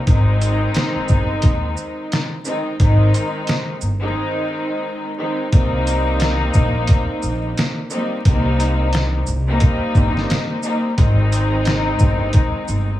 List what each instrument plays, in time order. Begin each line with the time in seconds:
0.06 upright bass G#1, string section D#3 G#3 C4 D#4, kick, closed hi-hat
0.41 closed hi-hat, shaker
0.74 snare, closed hi-hat
0.96 muted upright bass stroke
1.08 upright bass G1, kick, shaker
1.42 upright bass D#2, kick, closed hi-hat
1.77 shaker
2.12 snare, closed hi-hat
2.45 string section D#3 G#3 C4 D#4, shaker
2.80 upright bass G#1, string section D#3 G#3 C4 D#4, kick, closed hi-hat
3.14 closed hi-hat, shaker
3.47 snare, closed hi-hat
3.81 upright bass G1, shaker
4.01 string section D#3 G#3 C4 D#4
5.18 string section D#3 G#3 C4 D#4
5.52 upright bass C2, string section G3 A#3 C4 D#4, kick, closed hi-hat
5.87 closed hi-hat, shaker
6.20 snare, closed hi-hat
6.54 upright bass A#1, kick, shaker
6.87 kick, closed hi-hat
7.22 upright bass A#1, shaker
7.57 snare, closed hi-hat
7.90 string section G3 A#3 C4 D#4, shaker
8.25 upright bass C2, string section G3 A#3 C4 D#4, kick, closed hi-hat
8.60 closed hi-hat, shaker
8.93 snare, closed hi-hat
9.27 upright bass C2, shaker
9.48 string section G3 A#3 C4 D#4
9.60 kick, closed hi-hat
9.95 upright bass G1, kick, shaker
10.17 snare
10.30 snare, closed hi-hat
10.63 string section G3 A#3 C4 D#4, shaker
10.97 upright bass G#1, string section D#3 G#3 C4 D#4, kick, closed hi-hat
11.32 closed hi-hat, shaker
11.65 snare, closed hi-hat
11.99 upright bass G1, kick, shaker
12.33 kick, closed hi-hat
12.68 upright bass G1, shaker